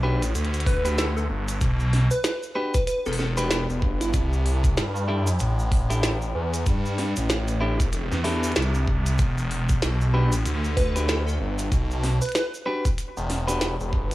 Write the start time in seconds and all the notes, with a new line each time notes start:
Already playing: B1
0.03 D4 F#4 G4 B4
0.15 A#1
0.22 closed hi-hat, cabasa
0.35 D2, closed hi-hat, cabasa
0.45 closed hi-hat
0.54 closed hi-hat, cabasa
0.60 closed hi-hat
0.66 B4, kick, open hi-hat
0.85 D4 F#4 G4 B4, closed hi-hat, cabasa
0.98 A4, snare, closed hi-hat, cabasa
1.17 A4, cabasa
1.29 G1
1.48 closed hi-hat, cabasa
1.61 B1, kick, closed hi-hat, cabasa
1.80 cabasa
1.93 snare, open hi-hat
2.11 B4, cabasa
2.24 B4, snare, closed hi-hat, cabasa
2.43 cabasa
2.55 D4 F#4 G4 B4
2.74 B4, kick, closed hi-hat, cabasa
2.87 B4, closed hi-hat, cabasa
3.06 E1 A4, cabasa
3.13 open hi-hat
3.19 A4, snare
3.37 D4 F#4 G4 B4, closed hi-hat, cabasa
3.50 snare, closed hi-hat, cabasa
3.69 E1, cabasa
3.82 G1, kick
4.01 E4, closed hi-hat, cabasa
4.13 C2, kick, closed hi-hat, cabasa
4.33 cabasa
4.46 open hi-hat
4.64 kick, closed hi-hat, cabasa
4.77 G2, snare, closed hi-hat, cabasa
4.96 cabasa
5.08 D4 E4 G4 A4
5.20 F#2
5.27 closed hi-hat, cabasa
5.39 A1, closed hi-hat, cabasa
5.59 cabasa
5.72 kick, open hi-hat
5.90 D4 E4 G4 A4, closed hi-hat, cabasa
6.03 snare, closed hi-hat, cabasa
6.22 cabasa
6.35 E2
6.54 closed hi-hat, cabasa
6.66 G2, kick, closed hi-hat, cabasa
6.86 cabasa
6.98 snare, open hi-hat
7.16 A1, closed hi-hat, cabasa
7.30 snare, closed hi-hat, cabasa
7.48 closed hi-hat, cabasa
7.61 D4 E4 G4 A4
7.80 kick, closed hi-hat, cabasa
7.93 closed hi-hat, cabasa
8.11 E2, snare, cabasa
8.24 D4 E4 G4 A4, snare, open hi-hat
8.43 closed hi-hat, cabasa
8.52 closed hi-hat, cabasa
8.56 C2, snare, closed hi-hat
8.62 closed hi-hat
8.74 cabasa
8.88 C2, kick
9.06 closed hi-hat, cabasa
9.18 E1, kick, closed hi-hat, cabasa
9.38 cabasa
9.51 open hi-hat
9.69 kick, closed hi-hat, cabasa
9.82 B1, snare, closed hi-hat, cabasa
10.01 cabasa
10.14 D4 F#4 G4 B4
10.25 A#1
10.32 closed hi-hat, cabasa
10.45 D2, closed hi-hat, cabasa
10.64 cabasa
10.77 B4, kick, open hi-hat
10.96 D4 F#4 G4 B4, closed hi-hat, cabasa
11.08 A4, snare, closed hi-hat, cabasa
11.27 A4, cabasa
11.40 G1
11.58 closed hi-hat, cabasa
11.72 B1, kick, closed hi-hat, cabasa
11.91 cabasa
12.04 snare, open hi-hat
12.21 B4, closed hi-hat, cabasa
12.26 closed hi-hat
12.29 closed hi-hat
12.32 snare, closed hi-hat
12.35 B4, closed hi-hat, cabasa
12.54 cabasa
12.66 D4 F#4 G4 B4
12.85 kick, closed hi-hat, cabasa
12.98 closed hi-hat, cabasa
13.17 E1, cabasa
13.30 snare, open hi-hat
13.48 D4 F#4 G4 B4, closed hi-hat, cabasa
13.61 snare, closed hi-hat, cabasa
13.80 E1, cabasa
13.93 G1, kick
14.11 closed hi-hat